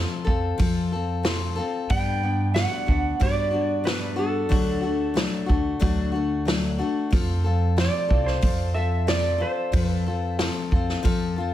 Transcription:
Already playing: steel-string acoustic guitar F3 C4 F4 A4
0.24 upright bass F2, steel-string acoustic guitar C4 F4 A4, kick
0.58 upright bass F2, steel-string acoustic guitar F3 C4 F4 A4, kick, open hi-hat
0.92 steel-string acoustic guitar C4 F4 A4
1.23 steel-string acoustic guitar F3 C4 F4 A4, snare, open hi-hat
1.56 steel-string acoustic guitar C4 F4 A4
1.90 upright bass G2, steel-string acoustic guitar G3 B3 D4, electric slide guitar G5, kick, open hi-hat
2.23 steel-string acoustic guitar B3 D4
2.54 steel-string acoustic guitar G3 B3 D4 F#4, electric slide guitar F#5, snare, open hi-hat
2.86 upright bass D2, steel-string acoustic guitar B3 D4 F#4, kick
3.20 upright bass G2, steel-string acoustic guitar G3 B3 D4 F#4, electric slide guitar D5, kick, open hi-hat
3.51 steel-string acoustic guitar B3 D4 F#4
3.84 steel-string acoustic guitar G3 B3 D4 F#4, electric slide guitar B4, snare, open hi-hat
4.16 steel-string acoustic guitar D4 F#4, electric slide guitar A4
4.20 steel-string acoustic guitar B3
4.49 upright bass D2, steel-string acoustic guitar D3 F#3 A3 D4 F#4, kick, open hi-hat
4.81 steel-string acoustic guitar A3 D4 F#4
5.14 steel-string acoustic guitar F#3 A3 D4 F#4, snare, open hi-hat
5.46 upright bass D2, steel-string acoustic guitar A3 D4 F#4, kick
5.80 upright bass D2, steel-string acoustic guitar D3 F#3 A3 D4 F#4, kick, open hi-hat
6.12 steel-string acoustic guitar D4 F#4
6.16 steel-string acoustic guitar A3
6.45 steel-string acoustic guitar F#3 A3 D4 F#4, snare, open hi-hat
6.78 steel-string acoustic guitar A3 D4 F#4
7.11 upright bass F2, steel-string acoustic guitar F3 C4 F4 A4, kick, open hi-hat
7.44 steel-string acoustic guitar C4 F4 A4
7.77 steel-string acoustic guitar F3 C4 F4 A4, electric slide guitar D5, snare, open hi-hat
8.08 upright bass C2, steel-string acoustic guitar C4 F4 A4, kick
8.26 electric slide guitar C5, snare
8.42 upright bass F2, steel-string acoustic guitar F3 C4 F4 A4, kick, open hi-hat
8.74 steel-string acoustic guitar C4 F4 A4, electric slide guitar E5
9.07 steel-string acoustic guitar F3 C4 F4 A4, electric slide guitar D5, snare, open hi-hat
9.38 steel-string acoustic guitar C4 F4 A4, electric slide guitar C5
9.72 upright bass F2, steel-string acoustic guitar F3 C4 F4 A4, kick, open hi-hat
9.85 electric slide guitar B4
10.06 steel-string acoustic guitar C4 F4 A4
10.39 steel-string acoustic guitar F3 C4 F4 A4, snare, open hi-hat
10.71 upright bass F2, steel-string acoustic guitar C4 F4 A4, kick
10.89 snare
11.03 upright bass F2, steel-string acoustic guitar F3 C4 F4 A4, kick, open hi-hat
11.36 steel-string acoustic guitar C4 F4 A4

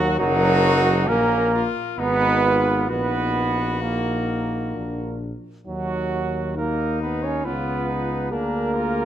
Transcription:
Already playing: bass trombone D#2, trombone F#3, flugelhorn F#4, trumpet F#4, french horn A#4
0.19 bass trombone F#1, trombone F#3, trumpet D#4, flugelhorn F#4, french horn A#4
1.08 bass trombone A#1, trombone A#3, trumpet C#4, flugelhorn A#4, french horn A#4
1.54 trumpet F4
1.98 bass trombone G#1, trombone B3, trumpet D#4, french horn D#4, flugelhorn B4
2.44 trumpet F4
2.89 bass trombone A#1, trombone B3, french horn D#4, trumpet F#4, flugelhorn B4
3.82 trombone A#3, french horn D#4, flugelhorn A#4
4.75 bass trombone A#1, french horn D4
5.66 bass trombone D#2, trombone F#3, french horn D#4, flugelhorn F#4
6.57 trombone A#3, french horn D#4, trumpet D#4, flugelhorn A#4
7.02 trombone B3, flugelhorn B4
7.23 trombone C#4, flugelhorn C#5
7.45 bass trombone C#2, trombone B3, trumpet F4, french horn F4, flugelhorn B4
7.89 trumpet D#4
8.31 bass trombone D2, trombone A#3, trumpet D4, french horn G#4, flugelhorn A#4
8.76 trumpet F4

